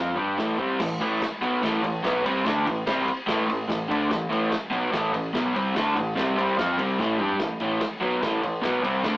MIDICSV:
0, 0, Header, 1, 6, 480
1, 0, Start_track
1, 0, Key_signature, 0, "minor"
1, 0, Tempo, 412655
1, 932, Time_signature, 4, 2, 24, 8
1, 10668, End_track
2, 0, Start_track
2, 0, Title_t, "Overdriven electric guitar"
2, 0, Program_c, 0, 29
2, 0, Note_on_c, 0, 53, 85
2, 0, Note_on_c, 0, 60, 91
2, 0, Note_on_c, 0, 65, 104
2, 180, Note_off_c, 0, 60, 0
2, 184, Note_on_c, 0, 55, 85
2, 189, Note_off_c, 0, 53, 0
2, 191, Note_off_c, 0, 65, 0
2, 196, Note_on_c, 0, 62, 104
2, 205, Note_on_c, 0, 67, 97
2, 430, Note_off_c, 0, 55, 0
2, 434, Note_on_c, 0, 45, 96
2, 436, Note_off_c, 0, 62, 0
2, 440, Note_off_c, 0, 67, 0
2, 444, Note_on_c, 0, 52, 109
2, 454, Note_on_c, 0, 57, 105
2, 661, Note_off_c, 0, 45, 0
2, 666, Note_on_c, 0, 48, 80
2, 673, Note_off_c, 0, 52, 0
2, 678, Note_on_c, 0, 55, 94
2, 683, Note_off_c, 0, 57, 0
2, 687, Note_on_c, 0, 60, 98
2, 912, Note_off_c, 0, 48, 0
2, 918, Note_off_c, 0, 55, 0
2, 923, Note_off_c, 0, 60, 0
2, 927, Note_on_c, 0, 45, 60
2, 931, Note_on_c, 0, 52, 75
2, 1122, Note_off_c, 0, 45, 0
2, 1125, Note_off_c, 0, 52, 0
2, 1165, Note_on_c, 0, 45, 86
2, 1171, Note_on_c, 0, 52, 93
2, 1182, Note_on_c, 0, 57, 103
2, 1392, Note_off_c, 0, 45, 0
2, 1406, Note_off_c, 0, 52, 0
2, 1411, Note_off_c, 0, 57, 0
2, 1645, Note_on_c, 0, 47, 107
2, 1657, Note_on_c, 0, 54, 100
2, 1663, Note_on_c, 0, 59, 106
2, 1878, Note_off_c, 0, 47, 0
2, 1883, Note_on_c, 0, 45, 98
2, 1888, Note_off_c, 0, 54, 0
2, 1892, Note_on_c, 0, 52, 107
2, 1893, Note_off_c, 0, 59, 0
2, 1903, Note_on_c, 0, 57, 107
2, 2119, Note_off_c, 0, 45, 0
2, 2119, Note_off_c, 0, 52, 0
2, 2133, Note_off_c, 0, 57, 0
2, 2133, Note_on_c, 0, 45, 61
2, 2133, Note_on_c, 0, 52, 75
2, 2328, Note_off_c, 0, 45, 0
2, 2328, Note_off_c, 0, 52, 0
2, 2360, Note_on_c, 0, 47, 105
2, 2365, Note_on_c, 0, 54, 97
2, 2378, Note_on_c, 0, 59, 118
2, 2601, Note_off_c, 0, 47, 0
2, 2605, Note_off_c, 0, 54, 0
2, 2605, Note_on_c, 0, 48, 90
2, 2611, Note_off_c, 0, 59, 0
2, 2618, Note_on_c, 0, 55, 99
2, 2629, Note_on_c, 0, 60, 103
2, 2834, Note_off_c, 0, 48, 0
2, 2839, Note_on_c, 0, 50, 86
2, 2845, Note_off_c, 0, 55, 0
2, 2849, Note_on_c, 0, 57, 108
2, 2855, Note_off_c, 0, 60, 0
2, 2860, Note_on_c, 0, 62, 104
2, 3082, Note_off_c, 0, 50, 0
2, 3087, Note_off_c, 0, 57, 0
2, 3092, Note_off_c, 0, 62, 0
2, 3095, Note_on_c, 0, 45, 69
2, 3099, Note_on_c, 0, 52, 76
2, 3290, Note_off_c, 0, 45, 0
2, 3291, Note_off_c, 0, 52, 0
2, 3332, Note_on_c, 0, 48, 99
2, 3338, Note_on_c, 0, 55, 93
2, 3347, Note_on_c, 0, 60, 94
2, 3563, Note_off_c, 0, 48, 0
2, 3572, Note_off_c, 0, 55, 0
2, 3576, Note_off_c, 0, 60, 0
2, 3800, Note_on_c, 0, 45, 105
2, 3808, Note_on_c, 0, 52, 107
2, 3818, Note_on_c, 0, 57, 117
2, 4033, Note_off_c, 0, 45, 0
2, 4043, Note_off_c, 0, 52, 0
2, 4047, Note_on_c, 0, 45, 64
2, 4052, Note_off_c, 0, 57, 0
2, 4057, Note_on_c, 0, 52, 78
2, 4245, Note_off_c, 0, 45, 0
2, 4250, Note_off_c, 0, 52, 0
2, 4285, Note_on_c, 0, 45, 63
2, 4289, Note_on_c, 0, 52, 76
2, 4484, Note_off_c, 0, 45, 0
2, 4486, Note_off_c, 0, 52, 0
2, 4523, Note_on_c, 0, 50, 88
2, 4535, Note_on_c, 0, 57, 97
2, 4542, Note_on_c, 0, 62, 101
2, 4756, Note_off_c, 0, 50, 0
2, 4761, Note_on_c, 0, 45, 61
2, 4762, Note_off_c, 0, 57, 0
2, 4766, Note_on_c, 0, 52, 78
2, 4774, Note_off_c, 0, 62, 0
2, 4962, Note_off_c, 0, 45, 0
2, 4965, Note_off_c, 0, 52, 0
2, 4996, Note_on_c, 0, 45, 96
2, 5006, Note_on_c, 0, 52, 92
2, 5018, Note_on_c, 0, 57, 102
2, 5229, Note_off_c, 0, 45, 0
2, 5246, Note_off_c, 0, 52, 0
2, 5251, Note_off_c, 0, 57, 0
2, 5470, Note_on_c, 0, 47, 98
2, 5486, Note_on_c, 0, 54, 109
2, 5491, Note_on_c, 0, 59, 99
2, 5705, Note_off_c, 0, 47, 0
2, 5710, Note_on_c, 0, 45, 110
2, 5717, Note_off_c, 0, 54, 0
2, 5722, Note_on_c, 0, 52, 99
2, 5726, Note_off_c, 0, 59, 0
2, 5730, Note_on_c, 0, 57, 120
2, 5950, Note_off_c, 0, 45, 0
2, 5958, Note_off_c, 0, 52, 0
2, 5964, Note_on_c, 0, 45, 69
2, 5967, Note_off_c, 0, 57, 0
2, 5972, Note_on_c, 0, 52, 76
2, 6163, Note_off_c, 0, 45, 0
2, 6167, Note_off_c, 0, 52, 0
2, 6204, Note_on_c, 0, 47, 87
2, 6218, Note_on_c, 0, 54, 115
2, 6227, Note_on_c, 0, 59, 116
2, 6443, Note_off_c, 0, 47, 0
2, 6450, Note_on_c, 0, 48, 86
2, 6451, Note_off_c, 0, 54, 0
2, 6455, Note_off_c, 0, 59, 0
2, 6461, Note_on_c, 0, 55, 94
2, 6470, Note_on_c, 0, 60, 109
2, 6682, Note_off_c, 0, 48, 0
2, 6685, Note_off_c, 0, 55, 0
2, 6686, Note_on_c, 0, 50, 84
2, 6690, Note_on_c, 0, 57, 100
2, 6696, Note_off_c, 0, 60, 0
2, 6701, Note_on_c, 0, 62, 106
2, 6922, Note_off_c, 0, 50, 0
2, 6926, Note_off_c, 0, 57, 0
2, 6926, Note_on_c, 0, 45, 71
2, 6931, Note_off_c, 0, 62, 0
2, 6934, Note_on_c, 0, 52, 70
2, 7123, Note_off_c, 0, 45, 0
2, 7127, Note_off_c, 0, 52, 0
2, 7158, Note_on_c, 0, 48, 90
2, 7166, Note_on_c, 0, 55, 98
2, 7176, Note_on_c, 0, 60, 109
2, 7388, Note_off_c, 0, 48, 0
2, 7401, Note_off_c, 0, 55, 0
2, 7402, Note_on_c, 0, 48, 91
2, 7404, Note_off_c, 0, 60, 0
2, 7415, Note_on_c, 0, 55, 90
2, 7417, Note_on_c, 0, 60, 99
2, 7640, Note_off_c, 0, 48, 0
2, 7644, Note_off_c, 0, 60, 0
2, 7645, Note_on_c, 0, 53, 106
2, 7648, Note_off_c, 0, 55, 0
2, 7658, Note_on_c, 0, 60, 107
2, 7660, Note_on_c, 0, 65, 121
2, 7881, Note_off_c, 0, 53, 0
2, 7885, Note_on_c, 0, 48, 92
2, 7889, Note_off_c, 0, 60, 0
2, 7890, Note_off_c, 0, 65, 0
2, 7895, Note_on_c, 0, 55, 112
2, 7903, Note_on_c, 0, 60, 98
2, 8122, Note_off_c, 0, 48, 0
2, 8127, Note_off_c, 0, 55, 0
2, 8131, Note_off_c, 0, 60, 0
2, 8131, Note_on_c, 0, 45, 101
2, 8142, Note_on_c, 0, 52, 108
2, 8151, Note_on_c, 0, 57, 108
2, 8364, Note_off_c, 0, 52, 0
2, 8365, Note_off_c, 0, 45, 0
2, 8366, Note_off_c, 0, 57, 0
2, 8368, Note_on_c, 0, 55, 91
2, 8371, Note_on_c, 0, 62, 89
2, 8383, Note_on_c, 0, 67, 98
2, 8603, Note_off_c, 0, 55, 0
2, 8604, Note_off_c, 0, 62, 0
2, 8611, Note_off_c, 0, 67, 0
2, 8613, Note_on_c, 0, 45, 60
2, 8613, Note_on_c, 0, 52, 69
2, 8804, Note_off_c, 0, 45, 0
2, 8804, Note_off_c, 0, 52, 0
2, 8851, Note_on_c, 0, 45, 86
2, 8858, Note_on_c, 0, 52, 101
2, 8867, Note_on_c, 0, 57, 93
2, 9070, Note_off_c, 0, 45, 0
2, 9087, Note_off_c, 0, 52, 0
2, 9092, Note_off_c, 0, 57, 0
2, 9318, Note_on_c, 0, 47, 86
2, 9324, Note_on_c, 0, 54, 95
2, 9339, Note_on_c, 0, 59, 109
2, 9553, Note_off_c, 0, 47, 0
2, 9558, Note_on_c, 0, 45, 97
2, 9559, Note_off_c, 0, 54, 0
2, 9565, Note_on_c, 0, 52, 105
2, 9567, Note_off_c, 0, 59, 0
2, 9573, Note_on_c, 0, 57, 110
2, 9782, Note_off_c, 0, 45, 0
2, 9784, Note_off_c, 0, 52, 0
2, 9796, Note_on_c, 0, 45, 72
2, 9798, Note_on_c, 0, 52, 70
2, 9804, Note_off_c, 0, 57, 0
2, 9994, Note_off_c, 0, 45, 0
2, 9995, Note_off_c, 0, 52, 0
2, 10022, Note_on_c, 0, 47, 95
2, 10035, Note_on_c, 0, 54, 97
2, 10040, Note_on_c, 0, 59, 99
2, 10264, Note_off_c, 0, 47, 0
2, 10268, Note_on_c, 0, 48, 91
2, 10273, Note_off_c, 0, 54, 0
2, 10276, Note_off_c, 0, 59, 0
2, 10278, Note_on_c, 0, 55, 90
2, 10287, Note_on_c, 0, 60, 98
2, 10505, Note_off_c, 0, 48, 0
2, 10510, Note_on_c, 0, 50, 91
2, 10514, Note_off_c, 0, 55, 0
2, 10518, Note_on_c, 0, 57, 87
2, 10520, Note_off_c, 0, 60, 0
2, 10532, Note_on_c, 0, 62, 101
2, 10668, Note_off_c, 0, 50, 0
2, 10668, Note_off_c, 0, 57, 0
2, 10668, Note_off_c, 0, 62, 0
2, 10668, End_track
3, 0, Start_track
3, 0, Title_t, "Picked electric bass"
3, 0, Program_c, 1, 34
3, 0, Note_on_c, 1, 41, 82
3, 169, Note_off_c, 1, 41, 0
3, 206, Note_on_c, 1, 43, 90
3, 431, Note_off_c, 1, 43, 0
3, 447, Note_on_c, 1, 33, 86
3, 673, Note_off_c, 1, 33, 0
3, 690, Note_on_c, 1, 36, 95
3, 915, Note_off_c, 1, 36, 0
3, 935, Note_on_c, 1, 33, 78
3, 1158, Note_off_c, 1, 33, 0
3, 1170, Note_on_c, 1, 33, 91
3, 1396, Note_off_c, 1, 33, 0
3, 1643, Note_on_c, 1, 35, 81
3, 1873, Note_off_c, 1, 35, 0
3, 1902, Note_on_c, 1, 33, 98
3, 2123, Note_off_c, 1, 33, 0
3, 2129, Note_on_c, 1, 33, 83
3, 2357, Note_off_c, 1, 33, 0
3, 2382, Note_on_c, 1, 35, 98
3, 2604, Note_off_c, 1, 35, 0
3, 2621, Note_on_c, 1, 36, 99
3, 2843, Note_off_c, 1, 36, 0
3, 2867, Note_on_c, 1, 38, 98
3, 3087, Note_off_c, 1, 38, 0
3, 3110, Note_on_c, 1, 33, 74
3, 3328, Note_off_c, 1, 33, 0
3, 3343, Note_on_c, 1, 36, 88
3, 3565, Note_off_c, 1, 36, 0
3, 3826, Note_on_c, 1, 33, 106
3, 4046, Note_off_c, 1, 33, 0
3, 4079, Note_on_c, 1, 33, 80
3, 4294, Note_off_c, 1, 33, 0
3, 4303, Note_on_c, 1, 33, 75
3, 4525, Note_off_c, 1, 33, 0
3, 4547, Note_on_c, 1, 38, 99
3, 4767, Note_off_c, 1, 38, 0
3, 4783, Note_on_c, 1, 33, 81
3, 5005, Note_off_c, 1, 33, 0
3, 5018, Note_on_c, 1, 33, 99
3, 5242, Note_off_c, 1, 33, 0
3, 5494, Note_on_c, 1, 35, 84
3, 5719, Note_off_c, 1, 35, 0
3, 5740, Note_on_c, 1, 33, 109
3, 5963, Note_off_c, 1, 33, 0
3, 5983, Note_on_c, 1, 33, 89
3, 6204, Note_off_c, 1, 33, 0
3, 6228, Note_on_c, 1, 35, 88
3, 6446, Note_off_c, 1, 35, 0
3, 6464, Note_on_c, 1, 36, 100
3, 6684, Note_off_c, 1, 36, 0
3, 6702, Note_on_c, 1, 38, 94
3, 6923, Note_off_c, 1, 38, 0
3, 6953, Note_on_c, 1, 33, 79
3, 7168, Note_off_c, 1, 33, 0
3, 7183, Note_on_c, 1, 36, 95
3, 7403, Note_off_c, 1, 36, 0
3, 7432, Note_on_c, 1, 36, 83
3, 7647, Note_off_c, 1, 36, 0
3, 7666, Note_on_c, 1, 41, 96
3, 7884, Note_off_c, 1, 41, 0
3, 7904, Note_on_c, 1, 36, 95
3, 8122, Note_off_c, 1, 36, 0
3, 8136, Note_on_c, 1, 33, 97
3, 8358, Note_off_c, 1, 33, 0
3, 8369, Note_on_c, 1, 43, 92
3, 8594, Note_off_c, 1, 43, 0
3, 8613, Note_on_c, 1, 33, 78
3, 8835, Note_off_c, 1, 33, 0
3, 8852, Note_on_c, 1, 33, 97
3, 9075, Note_off_c, 1, 33, 0
3, 9319, Note_on_c, 1, 35, 95
3, 9547, Note_off_c, 1, 35, 0
3, 9570, Note_on_c, 1, 33, 99
3, 9793, Note_off_c, 1, 33, 0
3, 9807, Note_on_c, 1, 33, 79
3, 10030, Note_off_c, 1, 33, 0
3, 10048, Note_on_c, 1, 35, 91
3, 10271, Note_off_c, 1, 35, 0
3, 10281, Note_on_c, 1, 36, 101
3, 10506, Note_off_c, 1, 36, 0
3, 10528, Note_on_c, 1, 38, 100
3, 10668, Note_off_c, 1, 38, 0
3, 10668, End_track
4, 0, Start_track
4, 0, Title_t, "Muted overdriven electric guitar strokes"
4, 1406, Note_on_c, 9, 29, 63
4, 1523, Note_off_c, 9, 29, 0
4, 3567, Note_on_c, 9, 29, 65
4, 3684, Note_off_c, 9, 29, 0
4, 5243, Note_on_c, 9, 29, 59
4, 5359, Note_off_c, 9, 29, 0
4, 9084, Note_on_c, 9, 29, 58
4, 9200, Note_off_c, 9, 29, 0
4, 10668, End_track
5, 0, Start_track
5, 0, Title_t, "Muted picked electric bass strokes"
5, 1419, Note_on_c, 9, 29, 36
5, 1535, Note_off_c, 9, 29, 0
5, 3587, Note_on_c, 9, 29, 40
5, 3703, Note_off_c, 9, 29, 0
5, 5264, Note_on_c, 9, 29, 37
5, 5380, Note_off_c, 9, 29, 0
5, 9094, Note_on_c, 9, 29, 39
5, 9211, Note_off_c, 9, 29, 0
5, 10668, End_track
6, 0, Start_track
6, 0, Title_t, "Drums"
6, 201, Note_on_c, 9, 36, 113
6, 318, Note_off_c, 9, 36, 0
6, 441, Note_on_c, 9, 46, 51
6, 444, Note_on_c, 9, 38, 102
6, 557, Note_off_c, 9, 46, 0
6, 561, Note_off_c, 9, 38, 0
6, 687, Note_on_c, 9, 36, 115
6, 804, Note_off_c, 9, 36, 0
6, 927, Note_on_c, 9, 49, 118
6, 930, Note_on_c, 9, 36, 119
6, 931, Note_on_c, 9, 38, 107
6, 1044, Note_off_c, 9, 49, 0
6, 1047, Note_off_c, 9, 36, 0
6, 1047, Note_off_c, 9, 38, 0
6, 1175, Note_on_c, 9, 51, 69
6, 1291, Note_off_c, 9, 51, 0
6, 1416, Note_on_c, 9, 36, 102
6, 1420, Note_on_c, 9, 51, 105
6, 1423, Note_on_c, 9, 38, 109
6, 1532, Note_off_c, 9, 36, 0
6, 1536, Note_off_c, 9, 51, 0
6, 1539, Note_off_c, 9, 38, 0
6, 1664, Note_on_c, 9, 51, 74
6, 1780, Note_off_c, 9, 51, 0
6, 1900, Note_on_c, 9, 36, 120
6, 1908, Note_on_c, 9, 51, 113
6, 1911, Note_on_c, 9, 38, 116
6, 2017, Note_off_c, 9, 36, 0
6, 2024, Note_off_c, 9, 51, 0
6, 2027, Note_off_c, 9, 38, 0
6, 2140, Note_on_c, 9, 51, 80
6, 2256, Note_off_c, 9, 51, 0
6, 2380, Note_on_c, 9, 36, 110
6, 2382, Note_on_c, 9, 51, 98
6, 2385, Note_on_c, 9, 38, 110
6, 2496, Note_off_c, 9, 36, 0
6, 2498, Note_off_c, 9, 51, 0
6, 2502, Note_off_c, 9, 38, 0
6, 2626, Note_on_c, 9, 51, 89
6, 2742, Note_off_c, 9, 51, 0
6, 2861, Note_on_c, 9, 36, 122
6, 2863, Note_on_c, 9, 51, 95
6, 2867, Note_on_c, 9, 38, 113
6, 2978, Note_off_c, 9, 36, 0
6, 2980, Note_off_c, 9, 51, 0
6, 2983, Note_off_c, 9, 38, 0
6, 3106, Note_on_c, 9, 51, 81
6, 3223, Note_off_c, 9, 51, 0
6, 3339, Note_on_c, 9, 36, 112
6, 3339, Note_on_c, 9, 51, 117
6, 3343, Note_on_c, 9, 38, 115
6, 3456, Note_off_c, 9, 36, 0
6, 3456, Note_off_c, 9, 51, 0
6, 3459, Note_off_c, 9, 38, 0
6, 3583, Note_on_c, 9, 51, 78
6, 3700, Note_off_c, 9, 51, 0
6, 3820, Note_on_c, 9, 51, 102
6, 3822, Note_on_c, 9, 36, 116
6, 3824, Note_on_c, 9, 38, 117
6, 3936, Note_off_c, 9, 51, 0
6, 3939, Note_off_c, 9, 36, 0
6, 3940, Note_off_c, 9, 38, 0
6, 4066, Note_on_c, 9, 51, 82
6, 4182, Note_off_c, 9, 51, 0
6, 4302, Note_on_c, 9, 36, 110
6, 4305, Note_on_c, 9, 51, 93
6, 4309, Note_on_c, 9, 38, 105
6, 4419, Note_off_c, 9, 36, 0
6, 4422, Note_off_c, 9, 51, 0
6, 4425, Note_off_c, 9, 38, 0
6, 4551, Note_on_c, 9, 51, 77
6, 4667, Note_off_c, 9, 51, 0
6, 4780, Note_on_c, 9, 51, 85
6, 4781, Note_on_c, 9, 36, 106
6, 4783, Note_on_c, 9, 38, 109
6, 4896, Note_off_c, 9, 51, 0
6, 4898, Note_off_c, 9, 36, 0
6, 4900, Note_off_c, 9, 38, 0
6, 5032, Note_on_c, 9, 51, 72
6, 5148, Note_off_c, 9, 51, 0
6, 5257, Note_on_c, 9, 51, 98
6, 5260, Note_on_c, 9, 38, 114
6, 5263, Note_on_c, 9, 36, 121
6, 5373, Note_off_c, 9, 51, 0
6, 5377, Note_off_c, 9, 38, 0
6, 5380, Note_off_c, 9, 36, 0
6, 5498, Note_on_c, 9, 51, 66
6, 5614, Note_off_c, 9, 51, 0
6, 5738, Note_on_c, 9, 51, 98
6, 5741, Note_on_c, 9, 36, 116
6, 5742, Note_on_c, 9, 38, 113
6, 5855, Note_off_c, 9, 51, 0
6, 5858, Note_off_c, 9, 36, 0
6, 5858, Note_off_c, 9, 38, 0
6, 5978, Note_on_c, 9, 51, 82
6, 6094, Note_off_c, 9, 51, 0
6, 6220, Note_on_c, 9, 51, 99
6, 6222, Note_on_c, 9, 36, 110
6, 6224, Note_on_c, 9, 38, 118
6, 6337, Note_off_c, 9, 51, 0
6, 6338, Note_off_c, 9, 36, 0
6, 6340, Note_off_c, 9, 38, 0
6, 6467, Note_on_c, 9, 51, 81
6, 6584, Note_off_c, 9, 51, 0
6, 6702, Note_on_c, 9, 51, 99
6, 6703, Note_on_c, 9, 36, 105
6, 6705, Note_on_c, 9, 38, 119
6, 6818, Note_off_c, 9, 51, 0
6, 6819, Note_off_c, 9, 36, 0
6, 6821, Note_off_c, 9, 38, 0
6, 6942, Note_on_c, 9, 51, 77
6, 7059, Note_off_c, 9, 51, 0
6, 7182, Note_on_c, 9, 36, 117
6, 7185, Note_on_c, 9, 51, 110
6, 7189, Note_on_c, 9, 38, 107
6, 7298, Note_off_c, 9, 36, 0
6, 7302, Note_off_c, 9, 51, 0
6, 7305, Note_off_c, 9, 38, 0
6, 7427, Note_on_c, 9, 51, 81
6, 7543, Note_off_c, 9, 51, 0
6, 7664, Note_on_c, 9, 36, 105
6, 7665, Note_on_c, 9, 51, 106
6, 7669, Note_on_c, 9, 38, 114
6, 7780, Note_off_c, 9, 36, 0
6, 7781, Note_off_c, 9, 51, 0
6, 7785, Note_off_c, 9, 38, 0
6, 7898, Note_on_c, 9, 51, 91
6, 8014, Note_off_c, 9, 51, 0
6, 8134, Note_on_c, 9, 36, 111
6, 8139, Note_on_c, 9, 38, 64
6, 8250, Note_off_c, 9, 36, 0
6, 8255, Note_off_c, 9, 38, 0
6, 8360, Note_on_c, 9, 45, 102
6, 8476, Note_off_c, 9, 45, 0
6, 8479, Note_on_c, 9, 43, 78
6, 8596, Note_off_c, 9, 43, 0
6, 8603, Note_on_c, 9, 51, 89
6, 8607, Note_on_c, 9, 38, 111
6, 8608, Note_on_c, 9, 36, 108
6, 8719, Note_off_c, 9, 51, 0
6, 8723, Note_off_c, 9, 38, 0
6, 8724, Note_off_c, 9, 36, 0
6, 8839, Note_on_c, 9, 51, 77
6, 8955, Note_off_c, 9, 51, 0
6, 9081, Note_on_c, 9, 51, 105
6, 9085, Note_on_c, 9, 38, 112
6, 9088, Note_on_c, 9, 36, 114
6, 9198, Note_off_c, 9, 51, 0
6, 9201, Note_off_c, 9, 38, 0
6, 9204, Note_off_c, 9, 36, 0
6, 9332, Note_on_c, 9, 51, 66
6, 9448, Note_off_c, 9, 51, 0
6, 9569, Note_on_c, 9, 36, 119
6, 9570, Note_on_c, 9, 51, 97
6, 9573, Note_on_c, 9, 38, 111
6, 9685, Note_off_c, 9, 36, 0
6, 9686, Note_off_c, 9, 51, 0
6, 9690, Note_off_c, 9, 38, 0
6, 9810, Note_on_c, 9, 51, 85
6, 9927, Note_off_c, 9, 51, 0
6, 10040, Note_on_c, 9, 51, 92
6, 10044, Note_on_c, 9, 38, 103
6, 10046, Note_on_c, 9, 36, 111
6, 10157, Note_off_c, 9, 51, 0
6, 10160, Note_off_c, 9, 38, 0
6, 10163, Note_off_c, 9, 36, 0
6, 10288, Note_on_c, 9, 51, 86
6, 10404, Note_off_c, 9, 51, 0
6, 10515, Note_on_c, 9, 51, 104
6, 10518, Note_on_c, 9, 38, 114
6, 10521, Note_on_c, 9, 36, 114
6, 10631, Note_off_c, 9, 51, 0
6, 10635, Note_off_c, 9, 38, 0
6, 10638, Note_off_c, 9, 36, 0
6, 10668, End_track
0, 0, End_of_file